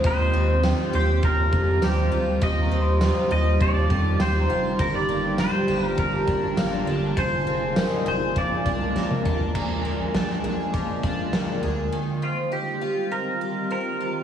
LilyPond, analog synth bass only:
\new Staff \with { instrumentName = "Analog synth bass" } { \clef bass \time 4/4 \key ees \major \tempo 4 = 101 ees,8 ees,8. r16 ees,8 ees,8 f,8 ees,8 d,8 | ees,8 ees,8. r16 ees,8 ees,8 f,8 ees,8 f,,8 | g,,8 g,,8. r16 g,,8 g,,8 aes,,8 g,,8 g,,8 | f,,8 f,,8. r16 f,,8 bes,,8 c,8 bes,,8 aes,,8 |
bes,,8 r16 bes,,16 bes,,8 bes,,8. r16 bes,,8 bes,,8 d,8 | r1 | }